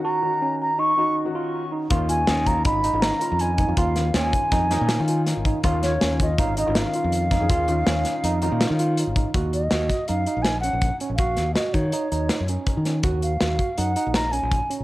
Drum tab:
HH |----------|xxxxxxxxxx|xxxxxxxxxx|xxxxxxxxxx|
SD |----------|--o---o---|-oo-ooo-o-|-oo---o--o|
BD |----------|o--oo----o|o--oo----o|o--oo----o|

HH |xxxxxxxxxx|xxxxxxxxxx|xxxxxxxxxx|xxxxxxxxxx|
SD |--oo--o---|--oo--o---|-oo---o--o|--o---o---|
BD |o--------o|o--o----o-|o--o----o-|o--o----o-|